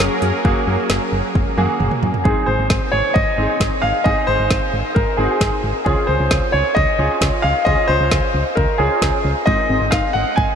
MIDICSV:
0, 0, Header, 1, 7, 480
1, 0, Start_track
1, 0, Tempo, 451128
1, 477, Time_signature, 4, 2, 24, 8
1, 11227, End_track
2, 0, Start_track
2, 0, Title_t, "Grand piano"
2, 0, Program_c, 0, 0
2, 2382, Note_on_c, 0, 68, 78
2, 2621, Note_on_c, 0, 72, 90
2, 2637, Note_off_c, 0, 68, 0
2, 3075, Note_off_c, 0, 72, 0
2, 3102, Note_on_c, 0, 73, 93
2, 3341, Note_on_c, 0, 75, 94
2, 3357, Note_off_c, 0, 73, 0
2, 3795, Note_off_c, 0, 75, 0
2, 4061, Note_on_c, 0, 77, 103
2, 4302, Note_on_c, 0, 75, 100
2, 4316, Note_off_c, 0, 77, 0
2, 4532, Note_off_c, 0, 75, 0
2, 4543, Note_on_c, 0, 72, 111
2, 5262, Note_on_c, 0, 70, 89
2, 5291, Note_off_c, 0, 72, 0
2, 5503, Note_on_c, 0, 68, 79
2, 5517, Note_off_c, 0, 70, 0
2, 5575, Note_on_c, 0, 66, 66
2, 5578, Note_off_c, 0, 68, 0
2, 5650, Note_on_c, 0, 68, 77
2, 5657, Note_off_c, 0, 66, 0
2, 5965, Note_off_c, 0, 68, 0
2, 6220, Note_on_c, 0, 68, 80
2, 6458, Note_on_c, 0, 72, 89
2, 6476, Note_off_c, 0, 68, 0
2, 6940, Note_on_c, 0, 73, 93
2, 6962, Note_off_c, 0, 72, 0
2, 7178, Note_on_c, 0, 75, 99
2, 7196, Note_off_c, 0, 73, 0
2, 7633, Note_off_c, 0, 75, 0
2, 7898, Note_on_c, 0, 77, 101
2, 8139, Note_on_c, 0, 75, 100
2, 8155, Note_off_c, 0, 77, 0
2, 8379, Note_on_c, 0, 72, 109
2, 8395, Note_off_c, 0, 75, 0
2, 9102, Note_on_c, 0, 70, 90
2, 9130, Note_off_c, 0, 72, 0
2, 9343, Note_on_c, 0, 68, 88
2, 9357, Note_off_c, 0, 70, 0
2, 9796, Note_off_c, 0, 68, 0
2, 10061, Note_on_c, 0, 75, 100
2, 10541, Note_on_c, 0, 77, 98
2, 10564, Note_off_c, 0, 75, 0
2, 10772, Note_off_c, 0, 77, 0
2, 10781, Note_on_c, 0, 78, 95
2, 11020, Note_on_c, 0, 80, 101
2, 11036, Note_off_c, 0, 78, 0
2, 11227, Note_off_c, 0, 80, 0
2, 11227, End_track
3, 0, Start_track
3, 0, Title_t, "Grand piano"
3, 0, Program_c, 1, 0
3, 0, Note_on_c, 1, 58, 88
3, 0, Note_on_c, 1, 66, 81
3, 0, Note_on_c, 1, 68, 100
3, 275, Note_off_c, 1, 58, 0
3, 275, Note_off_c, 1, 66, 0
3, 275, Note_off_c, 1, 68, 0
3, 477, Note_on_c, 1, 58, 90
3, 477, Note_on_c, 1, 66, 80
3, 477, Note_on_c, 1, 68, 99
3, 1168, Note_off_c, 1, 58, 0
3, 1168, Note_off_c, 1, 66, 0
3, 1168, Note_off_c, 1, 68, 0
3, 1675, Note_on_c, 1, 58, 86
3, 1675, Note_on_c, 1, 66, 79
3, 1675, Note_on_c, 1, 68, 95
3, 2194, Note_off_c, 1, 58, 0
3, 2194, Note_off_c, 1, 66, 0
3, 2194, Note_off_c, 1, 68, 0
3, 2396, Note_on_c, 1, 60, 72
3, 2396, Note_on_c, 1, 63, 66
3, 2396, Note_on_c, 1, 68, 78
3, 3087, Note_off_c, 1, 60, 0
3, 3087, Note_off_c, 1, 63, 0
3, 3087, Note_off_c, 1, 68, 0
3, 3595, Note_on_c, 1, 63, 68
3, 3596, Note_on_c, 1, 60, 73
3, 3596, Note_on_c, 1, 68, 79
3, 4114, Note_off_c, 1, 60, 0
3, 4114, Note_off_c, 1, 63, 0
3, 4114, Note_off_c, 1, 68, 0
3, 4315, Note_on_c, 1, 60, 73
3, 4316, Note_on_c, 1, 63, 68
3, 4316, Note_on_c, 1, 68, 83
3, 5007, Note_off_c, 1, 60, 0
3, 5007, Note_off_c, 1, 63, 0
3, 5007, Note_off_c, 1, 68, 0
3, 5517, Note_on_c, 1, 60, 73
3, 5517, Note_on_c, 1, 63, 67
3, 5517, Note_on_c, 1, 68, 79
3, 6035, Note_off_c, 1, 60, 0
3, 6035, Note_off_c, 1, 63, 0
3, 6035, Note_off_c, 1, 68, 0
3, 6235, Note_on_c, 1, 61, 76
3, 6235, Note_on_c, 1, 65, 69
3, 6235, Note_on_c, 1, 68, 83
3, 6927, Note_off_c, 1, 61, 0
3, 6927, Note_off_c, 1, 65, 0
3, 6927, Note_off_c, 1, 68, 0
3, 7436, Note_on_c, 1, 61, 74
3, 7436, Note_on_c, 1, 65, 69
3, 7436, Note_on_c, 1, 68, 83
3, 7954, Note_off_c, 1, 61, 0
3, 7954, Note_off_c, 1, 65, 0
3, 7954, Note_off_c, 1, 68, 0
3, 8156, Note_on_c, 1, 61, 74
3, 8156, Note_on_c, 1, 65, 65
3, 8156, Note_on_c, 1, 68, 80
3, 8847, Note_off_c, 1, 61, 0
3, 8847, Note_off_c, 1, 65, 0
3, 8847, Note_off_c, 1, 68, 0
3, 9357, Note_on_c, 1, 61, 73
3, 9357, Note_on_c, 1, 65, 64
3, 9357, Note_on_c, 1, 68, 78
3, 9875, Note_off_c, 1, 61, 0
3, 9875, Note_off_c, 1, 65, 0
3, 9875, Note_off_c, 1, 68, 0
3, 10077, Note_on_c, 1, 60, 74
3, 10077, Note_on_c, 1, 63, 65
3, 10077, Note_on_c, 1, 68, 83
3, 10767, Note_off_c, 1, 68, 0
3, 10768, Note_off_c, 1, 60, 0
3, 10768, Note_off_c, 1, 63, 0
3, 11227, End_track
4, 0, Start_track
4, 0, Title_t, "Analog synth pad"
4, 0, Program_c, 2, 89
4, 0, Note_on_c, 2, 54, 82
4, 0, Note_on_c, 2, 61, 77
4, 0, Note_on_c, 2, 68, 79
4, 0, Note_on_c, 2, 70, 90
4, 2358, Note_off_c, 2, 54, 0
4, 2358, Note_off_c, 2, 70, 0
4, 2359, Note_off_c, 2, 61, 0
4, 2359, Note_off_c, 2, 68, 0
4, 11227, End_track
5, 0, Start_track
5, 0, Title_t, "Synth arpeggio sound"
5, 0, Program_c, 3, 84
5, 10077, Note_on_c, 3, 56, 91
5, 10229, Note_off_c, 3, 56, 0
5, 10317, Note_on_c, 3, 60, 76
5, 10469, Note_off_c, 3, 60, 0
5, 10557, Note_on_c, 3, 63, 75
5, 10709, Note_off_c, 3, 63, 0
5, 11037, Note_on_c, 3, 80, 83
5, 11189, Note_off_c, 3, 80, 0
5, 11227, End_track
6, 0, Start_track
6, 0, Title_t, "FM bass"
6, 0, Program_c, 4, 39
6, 236, Note_on_c, 4, 42, 101
6, 339, Note_off_c, 4, 42, 0
6, 477, Note_on_c, 4, 30, 104
6, 579, Note_off_c, 4, 30, 0
6, 717, Note_on_c, 4, 42, 96
6, 819, Note_off_c, 4, 42, 0
6, 957, Note_on_c, 4, 30, 99
6, 1059, Note_off_c, 4, 30, 0
6, 1196, Note_on_c, 4, 30, 106
6, 1299, Note_off_c, 4, 30, 0
6, 1440, Note_on_c, 4, 30, 98
6, 1541, Note_off_c, 4, 30, 0
6, 1677, Note_on_c, 4, 42, 97
6, 1779, Note_off_c, 4, 42, 0
6, 1916, Note_on_c, 4, 30, 103
6, 2019, Note_off_c, 4, 30, 0
6, 2157, Note_on_c, 4, 42, 89
6, 2259, Note_off_c, 4, 42, 0
6, 2397, Note_on_c, 4, 32, 99
6, 2499, Note_off_c, 4, 32, 0
6, 2637, Note_on_c, 4, 32, 101
6, 2739, Note_off_c, 4, 32, 0
6, 2755, Note_on_c, 4, 32, 90
6, 2858, Note_off_c, 4, 32, 0
6, 2875, Note_on_c, 4, 32, 102
6, 2978, Note_off_c, 4, 32, 0
6, 3116, Note_on_c, 4, 32, 94
6, 3219, Note_off_c, 4, 32, 0
6, 3359, Note_on_c, 4, 32, 100
6, 3460, Note_off_c, 4, 32, 0
6, 3596, Note_on_c, 4, 32, 93
6, 3699, Note_off_c, 4, 32, 0
6, 3835, Note_on_c, 4, 32, 98
6, 3938, Note_off_c, 4, 32, 0
6, 4076, Note_on_c, 4, 32, 91
6, 4179, Note_off_c, 4, 32, 0
6, 4317, Note_on_c, 4, 32, 105
6, 4419, Note_off_c, 4, 32, 0
6, 4555, Note_on_c, 4, 32, 102
6, 4658, Note_off_c, 4, 32, 0
6, 4675, Note_on_c, 4, 32, 99
6, 4778, Note_off_c, 4, 32, 0
6, 4795, Note_on_c, 4, 32, 95
6, 4898, Note_off_c, 4, 32, 0
6, 5035, Note_on_c, 4, 32, 96
6, 5138, Note_off_c, 4, 32, 0
6, 5279, Note_on_c, 4, 32, 106
6, 5380, Note_off_c, 4, 32, 0
6, 5515, Note_on_c, 4, 32, 100
6, 5618, Note_off_c, 4, 32, 0
6, 5755, Note_on_c, 4, 32, 105
6, 5858, Note_off_c, 4, 32, 0
6, 5995, Note_on_c, 4, 32, 100
6, 6098, Note_off_c, 4, 32, 0
6, 6236, Note_on_c, 4, 37, 101
6, 6339, Note_off_c, 4, 37, 0
6, 6476, Note_on_c, 4, 37, 99
6, 6579, Note_off_c, 4, 37, 0
6, 6596, Note_on_c, 4, 37, 105
6, 6698, Note_off_c, 4, 37, 0
6, 6715, Note_on_c, 4, 37, 100
6, 6818, Note_off_c, 4, 37, 0
6, 6955, Note_on_c, 4, 37, 100
6, 7058, Note_off_c, 4, 37, 0
6, 7199, Note_on_c, 4, 37, 99
6, 7301, Note_off_c, 4, 37, 0
6, 7435, Note_on_c, 4, 37, 101
6, 7538, Note_off_c, 4, 37, 0
6, 7675, Note_on_c, 4, 37, 106
6, 7778, Note_off_c, 4, 37, 0
6, 7917, Note_on_c, 4, 37, 98
6, 8019, Note_off_c, 4, 37, 0
6, 8157, Note_on_c, 4, 37, 103
6, 8259, Note_off_c, 4, 37, 0
6, 8396, Note_on_c, 4, 37, 101
6, 8498, Note_off_c, 4, 37, 0
6, 8516, Note_on_c, 4, 37, 100
6, 8619, Note_off_c, 4, 37, 0
6, 8635, Note_on_c, 4, 37, 101
6, 8738, Note_off_c, 4, 37, 0
6, 8876, Note_on_c, 4, 37, 97
6, 8979, Note_off_c, 4, 37, 0
6, 9120, Note_on_c, 4, 37, 102
6, 9221, Note_off_c, 4, 37, 0
6, 9357, Note_on_c, 4, 37, 98
6, 9459, Note_off_c, 4, 37, 0
6, 9596, Note_on_c, 4, 37, 98
6, 9699, Note_off_c, 4, 37, 0
6, 9837, Note_on_c, 4, 37, 108
6, 9939, Note_off_c, 4, 37, 0
6, 10078, Note_on_c, 4, 32, 100
6, 10180, Note_off_c, 4, 32, 0
6, 10317, Note_on_c, 4, 32, 101
6, 10419, Note_off_c, 4, 32, 0
6, 10438, Note_on_c, 4, 32, 92
6, 10540, Note_off_c, 4, 32, 0
6, 10556, Note_on_c, 4, 32, 101
6, 10659, Note_off_c, 4, 32, 0
6, 10799, Note_on_c, 4, 32, 95
6, 10900, Note_off_c, 4, 32, 0
6, 11040, Note_on_c, 4, 32, 102
6, 11141, Note_off_c, 4, 32, 0
6, 11227, End_track
7, 0, Start_track
7, 0, Title_t, "Drums"
7, 0, Note_on_c, 9, 38, 116
7, 106, Note_off_c, 9, 38, 0
7, 234, Note_on_c, 9, 42, 65
7, 340, Note_off_c, 9, 42, 0
7, 478, Note_on_c, 9, 36, 107
7, 584, Note_off_c, 9, 36, 0
7, 954, Note_on_c, 9, 38, 119
7, 1061, Note_off_c, 9, 38, 0
7, 1437, Note_on_c, 9, 48, 59
7, 1440, Note_on_c, 9, 36, 92
7, 1543, Note_off_c, 9, 48, 0
7, 1546, Note_off_c, 9, 36, 0
7, 1677, Note_on_c, 9, 47, 69
7, 1783, Note_off_c, 9, 47, 0
7, 1916, Note_on_c, 9, 45, 83
7, 2023, Note_off_c, 9, 45, 0
7, 2037, Note_on_c, 9, 45, 74
7, 2143, Note_off_c, 9, 45, 0
7, 2156, Note_on_c, 9, 43, 92
7, 2262, Note_off_c, 9, 43, 0
7, 2277, Note_on_c, 9, 43, 82
7, 2383, Note_off_c, 9, 43, 0
7, 2397, Note_on_c, 9, 36, 104
7, 2503, Note_off_c, 9, 36, 0
7, 2873, Note_on_c, 9, 38, 115
7, 2875, Note_on_c, 9, 36, 115
7, 2979, Note_off_c, 9, 38, 0
7, 2982, Note_off_c, 9, 36, 0
7, 3359, Note_on_c, 9, 36, 113
7, 3465, Note_off_c, 9, 36, 0
7, 3835, Note_on_c, 9, 36, 105
7, 3839, Note_on_c, 9, 38, 112
7, 3941, Note_off_c, 9, 36, 0
7, 3945, Note_off_c, 9, 38, 0
7, 4317, Note_on_c, 9, 36, 108
7, 4423, Note_off_c, 9, 36, 0
7, 4793, Note_on_c, 9, 38, 116
7, 4795, Note_on_c, 9, 36, 117
7, 4900, Note_off_c, 9, 38, 0
7, 4901, Note_off_c, 9, 36, 0
7, 5279, Note_on_c, 9, 36, 113
7, 5385, Note_off_c, 9, 36, 0
7, 5755, Note_on_c, 9, 36, 104
7, 5758, Note_on_c, 9, 38, 109
7, 5861, Note_off_c, 9, 36, 0
7, 5865, Note_off_c, 9, 38, 0
7, 6236, Note_on_c, 9, 36, 108
7, 6343, Note_off_c, 9, 36, 0
7, 6713, Note_on_c, 9, 38, 115
7, 6715, Note_on_c, 9, 36, 117
7, 6819, Note_off_c, 9, 38, 0
7, 6821, Note_off_c, 9, 36, 0
7, 7199, Note_on_c, 9, 36, 110
7, 7305, Note_off_c, 9, 36, 0
7, 7675, Note_on_c, 9, 36, 105
7, 7679, Note_on_c, 9, 38, 115
7, 7782, Note_off_c, 9, 36, 0
7, 7785, Note_off_c, 9, 38, 0
7, 8157, Note_on_c, 9, 36, 108
7, 8263, Note_off_c, 9, 36, 0
7, 8634, Note_on_c, 9, 38, 112
7, 8636, Note_on_c, 9, 36, 116
7, 8740, Note_off_c, 9, 38, 0
7, 8742, Note_off_c, 9, 36, 0
7, 9120, Note_on_c, 9, 36, 113
7, 9226, Note_off_c, 9, 36, 0
7, 9596, Note_on_c, 9, 36, 103
7, 9600, Note_on_c, 9, 38, 112
7, 9703, Note_off_c, 9, 36, 0
7, 9706, Note_off_c, 9, 38, 0
7, 10078, Note_on_c, 9, 36, 109
7, 10185, Note_off_c, 9, 36, 0
7, 10555, Note_on_c, 9, 38, 112
7, 10557, Note_on_c, 9, 36, 113
7, 10661, Note_off_c, 9, 38, 0
7, 10663, Note_off_c, 9, 36, 0
7, 11040, Note_on_c, 9, 36, 113
7, 11147, Note_off_c, 9, 36, 0
7, 11227, End_track
0, 0, End_of_file